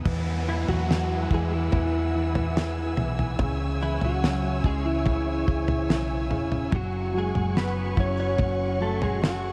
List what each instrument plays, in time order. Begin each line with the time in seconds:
Already playing: steel-string acoustic guitar B2 B3 D#4 B4
0.05 fingered electric bass E2, grand piano E3, steel-string acoustic guitar E3, string section B4 F#5 G#5 E6, kick, floor tom, crash, downlifter
0.47 grand piano E3, clean electric guitar E3 E4, steel-string acoustic guitar E4
0.68 fingered electric bass E2, clean electric guitar F#3 F#4, floor tom
0.88 grand piano E3, steel-string acoustic guitar B3, snare
1.31 fingered electric bass E2, grand piano E3, clean electric guitar G#3 G#4, steel-string acoustic guitar E4, kick
1.53 clean electric guitar E3 E4
1.71 fingered electric bass E2, grand piano E3, steel-string acoustic guitar B3, kick, floor tom
2.14 grand piano E3, steel-string acoustic guitar E4
2.35 floor tom
2.56 grand piano E3, steel-string acoustic guitar G#4, snare
2.97 fingered electric bass B1, grand piano E3, steel-string acoustic guitar E4, floor tom
3.19 floor tom
3.39 fingered electric bass C#2, steel-string acoustic guitar C#3, grand piano C#3, string section C#5 E5, kick, floor tom
3.81 grand piano C#3, clean electric guitar E3 E4, steel-string acoustic guitar E4
4.01 fingered electric bass C#2, clean electric guitar F#3 F#4, floor tom
4.23 grand piano C#3, steel-string acoustic guitar C#4, snare
4.64 fingered electric bass C#2, grand piano C#3, clean electric guitar G#3 G#4, steel-string acoustic guitar E4, kick
4.85 clean electric guitar E3 E4
5.06 grand piano C#3, steel-string acoustic guitar C#4, kick, floor tom
5.47 fingered electric bass C#2, grand piano C#3, steel-string acoustic guitar E4, kick
5.68 floor tom
5.89 fingered electric bass B1, grand piano C#3, steel-string acoustic guitar G#4, snare
6.30 fingered electric bass E1, grand piano C#3, steel-string acoustic guitar E4, floor tom
6.52 floor tom
6.71 fingered electric bass F#1, grand piano F#3, steel-string acoustic guitar F#3, clean electric guitar F#3, string section F#4 F#5 C#6, kick, floor tom
6.76 clean electric guitar F#4
7.13 grand piano F#3, steel-string acoustic guitar F#4
7.18 clean electric guitar G#3 G#4
7.35 fingered electric bass F#1, floor tom
7.55 grand piano F#3, clean electric guitar B3 B4, steel-string acoustic guitar C#4, snare
7.97 fingered electric bass F#1, grand piano F#3, clean electric guitar C#4 C#5, steel-string acoustic guitar E4, kick
8.17 clean electric guitar C#4 C#5, steel-string acoustic guitar F#4
8.38 fingered electric bass F#1, grand piano F#3, steel-string acoustic guitar C#4, kick, floor tom
8.80 grand piano F#3, clean electric guitar A3 A4, steel-string acoustic guitar F#4
9.02 clean electric guitar G#3 G#4, floor tom
9.22 grand piano F#3, clean electric guitar F#3 F#4, steel-string acoustic guitar G#4, snare